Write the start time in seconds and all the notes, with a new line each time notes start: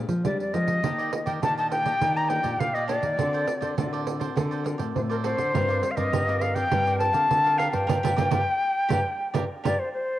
Already playing: A#2 G#3 D4 G4
0.09 F3, pandeiro
0.24 F2 G3 G#3 D4 G4 D5, pandeiro
0.40 D5, pandeiro
0.53 F3 G#3 D4 G4 D#5, pandeiro
0.68 pandeiro
0.83 D#3 A#3 D4 G4 D5 D#5, pandeiro
0.98 G4 D5 D#5, pandeiro
1.12 muted cavaquinho stroke, pandeiro
1.26 D#3 G4 D5 D#5 G5, pandeiro
1.42 A#2 D#3 A#3 D4 G4 D5 D#5 A5, pandeiro
1.58 G4 D5 D#5 A5, pandeiro
1.71 G5, pandeiro
1.85 A#3 D4 G4 D5 D#5, pandeiro
2.01 D#3 D4 G4 D5 D#5, pandeiro
2.17 G4 D5 D#5 A#5, pandeiro
2.29 A#3 D4 G4 G5, muted cavaquinho stroke, pandeiro
2.43 A#2 G4 D5 D#5, pandeiro
2.60 A#2 F5, pandeiro
2.74 G4 D5 D#5, pandeiro
2.88 A#3 D4 G4 D5 D#5, pandeiro
3.02 D#3 G4 D5 D#5, pandeiro
3.17 D3 C4 F#4 A4 A#4 C5 D5, pandeiro
3.33 A4 C5 D5, pandeiro
3.47 muted cavaquinho stroke, pandeiro
3.61 D3 A4 C5 D5, pandeiro
3.77 A2 D3 C4 F#4 A4 A#4 C5 D5, pandeiro
3.93 A4 C5 D5, pandeiro
4.07 pandeiro
4.20 C4 F#4 A4 A#4 C5 D5, pandeiro
4.36 D3 F#4 A4 C5 D5, pandeiro
4.51 A4 C5 D5, pandeiro
4.64 C4 F#4 A#4, muted cavaquinho stroke, pandeiro
4.78 A2 A4 C5 D5, pandeiro
4.95 A2 C5, pandeiro
5.10 A4 A#4 C5 D5, pandeiro
5.23 C4 F#4 A4 A#4 C5 D5, pandeiro
5.37 D3 A4 C5 D5, pandeiro
5.53 G2 G3 C4 F4 G4 A#4 D5 F5, pandeiro
5.69 A#4 D5 F5, pandeiro
5.82 muted cavaquinho stroke, pandeiro
5.91 F5
5.96 G2 C4 F4 A#4 D5 D#5 F5, pandeiro
6.12 G2 D3 G4 A#4 D5 F5, pandeiro
6.27 C4 F4 A#4 D5 F5, pandeiro
6.41 F5, pandeiro
6.55 C4 F4 A#4 D5 F5 G5, pandeiro
6.71 G2 G3 C4 F4 G4 A#4 D5 F5, pandeiro
6.85 A#4 D5 F5, pandeiro
6.99 A5, muted cavaquinho stroke, pandeiro
7.13 D3 C4 F4 A#4 D5 F5, pandeiro
7.30 D3, pandeiro
7.44 C4 F4 A#4 D5 F5, pandeiro
7.58 G4 A#4 D5 F5, pandeiro
7.71 G2 A#4 D5 F5 G5, pandeiro
7.87 G2 D4 F4 G4 A#4 D5, pandeiro
8.03 G2 D4 F4 G4 A#4 D5, pandeiro
8.16 G2 D4 F4 G4 A#4 D5, pandeiro
8.31 G2 D4 F4 G4 A#4 D5, pandeiro
8.89 G2 D4 F4 G4 A#4 D5, pandeiro
9.34 G2 D4 F4 G4 A#4 D5, pandeiro
9.64 G2 D4 F4 G4 A#4 D5, pandeiro
9.79 C5
9.93 C5